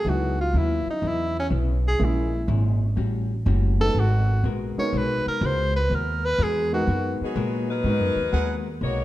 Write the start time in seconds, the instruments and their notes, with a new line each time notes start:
Already playing: tenor saxophone G#4
0.05 upright bass C#2, hollow-body jazz guitar C#3 F#3 B3 E4, grand piano F#3 B3 D#4 E4 G#4
0.09 tenor saxophone F#4
0.41 tenor saxophone F4
0.54 upright bass D#2, hollow-body jazz guitar C#3 F#3 B3 E4
0.58 tenor saxophone E4
0.87 tenor saxophone D#4, muted upright bass stroke
1.02 upright bass E2, hollow-body jazz guitar C#3 F#3 B3 E4
1.08 tenor saxophone E4
1.39 tenor saxophone C#4
1.50 upright bass B1, hollow-body jazz guitar C#3 F#3 B3 E4
1.88 tenor saxophone G#4
1.99 upright bass A#1, hollow-body jazz guitar A#2 G#3 C#4 E4, grand piano G#3 A#3 C#4 E4 G#4
2.05 tenor saxophone E4
2.48 upright bass G#1, hollow-body jazz guitar A#2 G#3 C#4 E4
2.96 upright bass A1, hollow-body jazz guitar A2 G3 C#4 F#4
3.46 upright bass F#1, hollow-body jazz guitar A2 G3 C#4 F#4
3.80 grand piano G#3 B3 D#4 F#4 B4, tenor saxophone A4
3.95 upright bass G#1, hollow-body jazz guitar G#3 B3 F#4 A#4
4.00 tenor saxophone F#4
4.44 upright bass A#1, hollow-body jazz guitar G#3 B3 F#4 A#4
4.77 grand piano G#3 B3 D#4 F#4 A#4, tenor saxophone C#5, muted upright bass stroke
4.93 upright bass B1, hollow-body jazz guitar G#3 B3 F#4 A#4
4.98 tenor saxophone B4
5.26 tenor saxophone A#4, muted upright bass stroke
5.41 upright bass C#2, hollow-body jazz guitar G#3 B3 F#4 A#4
5.46 tenor saxophone C5
5.76 tenor saxophone B4
5.90 upright bass D#2, hollow-body jazz guitar G#3 B3 F#4 A#4
5.95 tenor saxophone A#4
6.25 tenor saxophone B4
6.38 upright bass E2, hollow-body jazz guitar G#3 B3 F#4 A#4
6.43 tenor saxophone G#4
6.72 grand piano G#3 B3 D#4 F#4 A#4, tenor saxophone F#4
6.87 upright bass F#2, hollow-body jazz guitar G#3 B3 F#4 A#4
7.21 saxophone section F#3 B3 D#4 G#4, muted upright bass stroke
7.36 upright bass A#2, hollow-body jazz guitar G#3 B3 F#4 A#4
7.70 saxophone section F#3 D#4 A#4 B4
7.84 upright bass G#2, hollow-body jazz guitar G#3 B3 F#4 A#4, grand piano G#3 B3 D#4 F#4 A#4
8.00 upright bass F#2
8.16 upright bass D#2
8.33 upright bass D#2, hollow-body jazz guitar G#3 B3 F#4 A#4, trumpet section G#4 A#4 B4 F#5
8.81 upright bass B1, hollow-body jazz guitar G#3 B3 F#4 A#4, saxophone section A#3 D#4 F#4 C#5